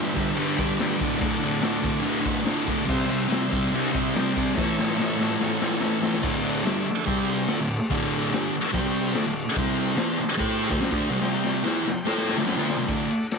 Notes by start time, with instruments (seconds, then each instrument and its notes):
Already playing: distorted electric guitar G2 D3 G3, transistor combo organ G4 B4 E5
0.15 distorted electric guitar D3 G3, kick, ride
0.19 distorted electric guitar G2
0.34 distorted electric guitar G2 D3, transistor combo organ G4 B4 D5, ride
0.40 distorted electric guitar G3
0.57 distorted electric guitar D3 G3, kick, ride
0.78 distorted electric guitar G2 D3 G3, transistor combo organ G4 B4 D5, snare, ride
0.98 distorted electric guitar A2 D3, transistor combo organ F#4, kick, ride
1.03 distorted electric guitar D2, transistor combo organ A4 D5
1.19 distorted electric guitar D2 A2, kick, ride
1.23 distorted electric guitar D3
1.39 distorted electric guitar D3, ride
1.44 distorted electric guitar A2
1.60 distorted electric guitar D2 A2, transistor combo organ F#4 A4 D5, snare, ride
1.65 distorted electric guitar D3
1.81 distorted electric guitar A2 D3, kick, ride
1.85 distorted electric guitar D2
2.01 distorted electric guitar D2 A2, transistor combo organ A4 B4, ride
2.05 distorted electric guitar D3, transistor combo organ F#4
2.21 distorted electric guitar D3
2.25 distorted electric guitar A2, kick, ride
2.41 distorted electric guitar D2 A2
2.45 distorted electric guitar D3, transistor combo organ F#4 A4 D5, snare, ride
2.65 distorted electric guitar D3, kick, ride
2.70 distorted electric guitar A2
2.85 distorted electric guitar C3 G3, transistor combo organ G4, kick, crash
2.89 distorted electric guitar C4, transistor combo organ C5 E5
3.07 distorted electric guitar C4, ride
3.11 distorted electric guitar G3
3.29 distorted electric guitar C3 G3, transistor combo organ G4 C5 E5, snare, ride
3.33 distorted electric guitar C4
3.49 distorted electric guitar G3 C4, kick
3.53 distorted electric guitar C3, ride
3.70 distorted electric guitar C3, transistor combo organ G4 C5 E5, ride
3.74 distorted electric guitar G3 C4
3.92 distorted electric guitar C4, kick, ride
3.97 distorted electric guitar G3
4.13 distorted electric guitar C3 G3, transistor combo organ G4 C5 D5, snare, ride
4.19 distorted electric guitar C4
4.34 distorted electric guitar C4, kick, ride
4.38 distorted electric guitar G3
4.54 distorted electric guitar A2 E3, transistor combo organ A4 C#5 E5, kick
4.59 distorted electric guitar A3, snare
4.79 distorted electric guitar A3, snare
4.83 distorted electric guitar E3
4.91 transistor combo organ A4 C#5, snare
4.97 distorted electric guitar A2 E3, transistor combo organ E5, snare
5.02 distorted electric guitar A3
5.16 distorted electric guitar E3 A3
5.21 distorted electric guitar A2, snare
5.31 snare
5.38 distorted electric guitar A2 E3, transistor combo organ A4 C#5 F#5, snare
5.42 distorted electric guitar A3
5.59 distorted electric guitar A3, snare
5.63 distorted electric guitar E3
5.71 snare
5.79 distorted electric guitar A2 E3, transistor combo organ A4 C#5 E5, snare
5.84 distorted electric guitar A3
6.00 distorted electric guitar E3 A3, snare
6.14 snare
6.21 distorted electric guitar D2 A2 D3, transistor combo organ A4 D5 F#5, kick, crash
6.45 crash
6.62 distorted electric guitar G2 D3, transistor combo organ A4 D5 E5
6.66 distorted electric guitar G3, snare, crash
6.86 muted distorted electric guitar stroke, crash
7.06 distorted electric guitar C3 G3 C4, transistor combo organ G4 C5 G5, kick, crash
7.27 crash
7.48 distorted electric guitar D3 A3, transistor combo organ A4 D5 F#5, snare, crash
7.60 distorted electric guitar D2 A2
7.71 crash
7.90 distorted electric guitar D2 A2 D3, transistor combo organ A4 D5 F#5, kick, crash
8.03 snare
8.12 crash
8.32 distorted electric guitar G2 D3 G3, transistor combo organ A4 D5 F#5, snare, crash
8.53 muted distorted electric guitar stroke, crash
8.72 distorted electric guitar C3 G3 C4, transistor combo organ G4 C5 G5, kick, crash
8.94 crash
9.15 distorted electric guitar D3 A3, transistor combo organ A4 D5 F#5, snare, crash
9.26 distorted electric guitar D2 A2
9.37 crash
9.54 distorted electric guitar C3, transistor combo organ G4 C5 G5, kick, crash
9.59 distorted electric guitar G3 C4
9.67 snare
9.76 crash
9.95 distorted electric guitar E3 B3, transistor combo organ G4 C5 A5, snare, crash
9.99 distorted electric guitar E4
10.19 muted distorted electric guitar stroke, crash
10.37 distorted electric guitar A3 E4 A4, transistor combo organ G4 C5 G5, kick, crash
10.62 crash
10.69 distorted electric guitar D3 A3, kick
10.79 distorted electric guitar F#3 C#4, transistor combo organ G4 C5 F#5, crash
10.83 snare
10.91 distorted electric guitar D3 A3 D4, kick
11.02 crash
11.10 distorted electric guitar C3 G3
11.14 snare
11.20 distorted electric guitar C3 G3 C4, transistor combo organ G4 C5 G5, snare
11.45 snare
11.60 distorted electric guitar E3 B3, transistor combo organ G4 C5 G5
11.65 distorted electric guitar E4, snare
11.81 transistor combo organ F#5, muted distorted electric guitar stroke
11.87 snare
12.02 distorted electric guitar A3, transistor combo organ G4 C5 G5
12.07 distorted electric guitar E4 A4, snare
12.18 snare
12.22 transistor combo organ A5
12.29 snare
12.37 distorted electric guitar D3 A3, transistor combo organ G4, snare
12.42 transistor combo organ C5 G5 B5
12.46 distorted electric guitar F#3 C#4, snare
12.57 distorted electric guitar D3 A3 D4, snare
12.65 transistor combo organ C6
12.70 snare
12.78 distorted electric guitar C3 G3, snare
12.87 distorted electric guitar D2 A2 D3, transistor combo organ A4 D5 F#5, kick, ride
13.11 ride
13.31 transistor combo organ A4 D5 F#5, snare, ride